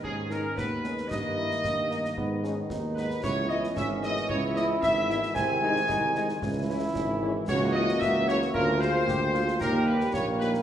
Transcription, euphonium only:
\new Staff \with { instrumentName = "Euphonium" } { \time 2/4 \key gis \minor \tempo 4 = 113 cis'4 b8 cis'8 | dis'8 e'8 dis'8 ais8 | b8 cis'8 dis'4 | e'4 cis'4 |
e'2 | bis4 dis'8 r8 | e'2 | fis'2 |
eis'4 g'8 eis'8 | g'4 ais4 | }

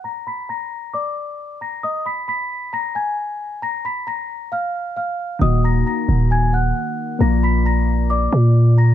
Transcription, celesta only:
\new Staff \with { instrumentName = "Celesta" } { \time 4/4 \key ees \minor \tempo 4 = 134 <bes'' bes'''>8 <ces''' ces''''>8 <bes'' bes'''>4 <d'' d'''>4. <bes'' bes'''>8 | <ees'' ees'''>8 <ces''' ces''''>8 <ces''' ces''''>4 <bes'' bes'''>8 <aes'' aes'''>4. | <bes'' bes'''>8 <ces''' ces''''>8 <bes'' bes'''>4 <f'' f'''>4 <f'' f'''>4 | <ees'' ees'''>8 <bes'' bes'''>8 <bes'' bes'''>4 <aes'' aes'''>8 <ges'' ges'''>4. |
<bes'' bes'''>8 <ces''' ces''''>8 <bes'' bes'''>4 <d'' d'''>4. <bes'' bes'''>8 | }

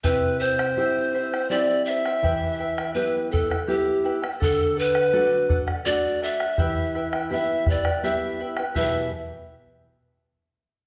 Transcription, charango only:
\new Staff \with { instrumentName = "Charango" } { \time 3/4 \key e \minor \tempo 4 = 83 <e' g' e'' g''>8 <e' c'' e'' g''>16 <e' c'' g''>16 <e' g' c'' e'' g''>8 <e' c'' e'' g''>16 <e' c'' g''>16 <e' g' c'' e'' g''>8 <e' c'' e'' g''>16 <e' c'' g''>16 | <e' g' b' e'' g''>8 <e' b' e'' g''>16 <e' b' g''>16 <e' g' b' e'' g''>8 <e' b' e'' g''>16 <e' b' g''>16 <e' g' b' e'' g''>8 <e' b' e'' g''>16 <e' b' g''>16 | <a' d'' fis''>8 <a' d'' fis''>16 <d'' fis''>16 <a' d'' fis''>8 <a' d'' fis''>16 <d'' fis''>16 <a' d'' fis''>8 <a' d'' fis''>16 <d'' fis''>16 | <e' g' b' e'' g''>8 <e' b' e'' g''>16 <e' b' g''>16 <e' g' b' e'' g''>8 <e' b' e'' g''>16 <e' b' g''>16 <e' g' b' e'' g''>8 <e' b' e'' g''>16 <e' b' g''>16 |
<e' g' b' e'' g''>8 r2 r8 | }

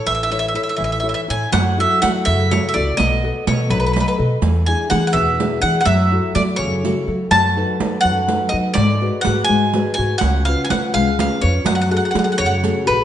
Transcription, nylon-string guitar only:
\new Staff \with { instrumentName = "Nylon-string guitar" } { \time 6/8 \key a \major \tempo 4. = 83 <e e' a' cis''>8 <e' a' cis''>8 <e' a' cis''>8 e8 <e' a' cis''>8 <e' a' cis''>8 | \key fis \minor fis8 <e' fis' a'>8 <e' fis' a'>8 cis8 <e' fis' a'>8 <e' fis' a'>8 | b8 <a' b' dis''>8 <a' b' dis''>8 fis8 <a' b' dis''>8 <a' b' dis''>8 | e8 <d' e' gis'>8 <d' e' gis'>8 b,8 <d' e' gis'>8 <d' e' gis'>8 |
fis8 <e' fis' a'>8 <e' fis' a'>8 cis8 <e' fis' a'>8 <e' fis' a'>8 | fis8 <dis' a' b'>8 <dis' a' b'>8 fis8 <dis' a' b'>8 <dis' a' b'>8 | gis8 <fis' gis' b'>8 <fis' gis' b'>8 gis8 <fis' gis' b'>8 <fis' gis' b'>8 | cis8 <cis' eis' b'>8 <cis' eis' b'>8 gis8 <cis' eis' b'>8 <cis' eis' b'>8 |
fis8 <fis' gis' a'>8 <fis' gis' a'>8 cis8 <fis' gis' a'>8 <fis' gis' a'>8 | }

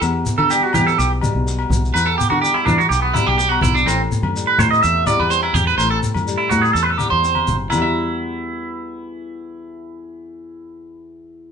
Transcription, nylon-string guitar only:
\new Staff \with { instrumentName = "Nylon-string guitar" } { \clef bass \time 4/4 \key e \minor \tempo 4 = 125 << { <g b>4 g8 b4 g8 b4 | b4 g8 b4 g8 b4 | c'4 g8 c'4 g8 c'4 | c'4 g8 c'4 g8 c'4 |
<e g b fis'>1~ | <e g b fis'>1 | } \\ { e,4. e4 b,4. | e,4. e4 b,4. | a,4. e4 e,4. | a,4. e4 e,4. |
e,1~ | e,1 | } >> }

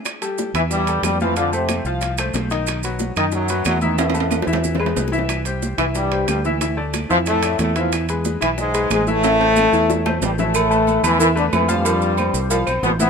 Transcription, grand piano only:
\new Staff \with { instrumentName = "Grand piano" } { \time 4/4 \key a \minor \tempo 4 = 183 r8 <g g' a'>4 <e e' e''>4 <g g' a'>4 <f f' f''>8 | <f f' f''>8 <a a' c''>4 <f f' f''>4 <a a' c''>4 <dis dis' dis''>8~ | <dis dis' dis''>8 <fis fis' b'>4 <dis dis' dis''>4 <fis fis' b'>4 <e e' e''>8 | <e e' e''>8 <a a' b'>4 <e e' e''>4 <gis gis' b'>4 <e e' e''>8~ |
<e e' e''>8 <g g' c''>4 <e e' e''>4 <g g' c''>4 <e e' e''>8 | <e e' e''>8 <a a' d''>4 <e e' e''>4 <a a' d''>4 <e e' e''>8~ | <e e' e''>8 <gis gis' b'>4 <e e' e''>4 <gis gis' b'>4 <e e' e''>8 | <e e' e''>8 <a a' c''>4 <e e' e''>4 <a a' c''>4 <e e' e''>8 |
r8 <a a' b'>4 <a a' b'>8 <e e' e''>8 <a a' b'>4 <f f' f''>8 | <f f' f''>4 <c' c''>4 <f f' f''>8 <c' c''>4 <e e' e''>8 | }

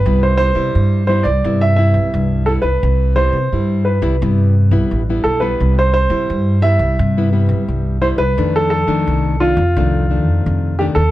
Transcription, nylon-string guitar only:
\new Staff \with { instrumentName = "Nylon-string guitar" } { \time 4/4 \key c \major \tempo 4 = 86 << { <g b e'>8 <g b e'>16 <g e'>8. <g b e'>16 r16 <g b e'>8 <g b e'>4 <g b e'>16 r16 | r8 <g b e'>16 r16 <g e'>8. <g b e'>16 <g b e'>8 r16 <g b e'>8 <g b e'>8 <g b e'>16~ | <g b e'>8 r16 <g e'>8. <g b e'>8 r16 <g b e'>16 <g b e'>4 <g b e'>16 r16 | <ees a d'>8. <ees a d'>8. <ees a d'>16 r16 <ees a d'>8 <ees a d'>4 <ees a d'>16 r16 | } \\ { c4 g,4 c4 g,4 | c4 g,4 c4 g,4 | c4 g,4 c4 g,4 | f,4 c4 f,4 c4 | } >> }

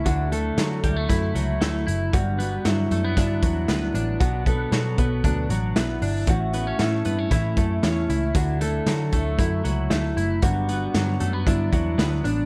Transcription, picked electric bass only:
\new Staff \with { instrumentName = "Picked electric bass" } { \clef bass \time 4/4 \key d \major \tempo 4 = 116 d,4 d8 d,8 fis,8 cis,8 d,8 fis,,8 | g,,4 g,8 fis,8 g,8 e,8 d,8 a,,8 | b,,4 b,8 b,,8 d,8 a,,8 b,,8 g,,8 | a,,4 a,8 g,8 a,8 fis,8 e,8 cis,8 |
d,4 d8 d,8 fis,8 cis,8 d,8 fis,,8 | g,,4 g,8 fis,8 g,8 e,8 d,8 a,,8 | }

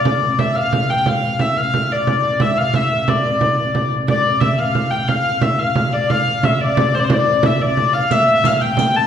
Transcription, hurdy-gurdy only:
\new Staff \with { instrumentName = "Hurdy-gurdy" } { \time 6/8 \key d \minor \tempo 4. = 119 d''4 e''8 f''4 g''8 | f''4 e''8 f''4 d''8 | d''4 e''8 f''8 e''4 | d''2~ d''8 r8 |
d''4 e''8 f''4 g''8 | f''4 e''8 f''4 d''8 | f''4 e''8 d''4 c''32 d''32 c''16 | d''4 e''8 d''4 f''8 |
e''4 f''8 g''4 a''8 | }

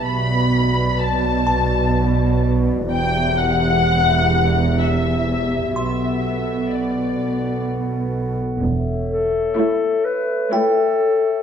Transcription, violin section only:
\new Staff \with { instrumentName = "Violin section" } { \time 3/4 \key b \phrygian \tempo 4 = 63 b''4 a''4. r8 | g''8 fis''4. e''4 | e''4 d''4 r4 | r4 cis''4 cis''4 | }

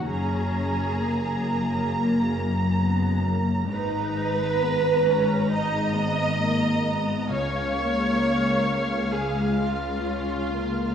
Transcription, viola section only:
\new Staff \with { instrumentName = "Viola section" } { \time 4/4 \key fis \major \tempo 4 = 66 cis'4 ais2 b8 ais8 | dis'4 b8 cis'8 dis'8 b8 ais8 b8 | cis'8 ais4. gis4 cis'8 ais8 | }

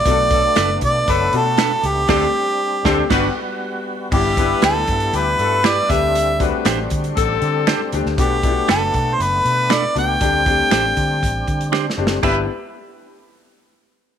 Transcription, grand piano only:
\new Staff \with { instrumentName = "Grand piano" } { \time 4/4 \key g \major \tempo 4 = 118 <a b d' fis'>4. r4 <a b d' fis'>4 r8 | <a c' d' g'>8 r4 <a c' d' g'>8 <g b d' fis'>8 r4. | <g b d' e'>8 <g b d' e'>4. r4. <a c' d' g'>8~ | <a c' d' g'>8 <a c' d' fis'>4. r4. <a c' d' g'>8 |
<a b d' fis'>8 <a b d' e' fis'>4. r4. <a b d' fis'>8 | <a c' d' g'>8 <a c' d' g'>4. r4. <a c' d' g'>8 | <b d' e' g'>8 r2. r8 | }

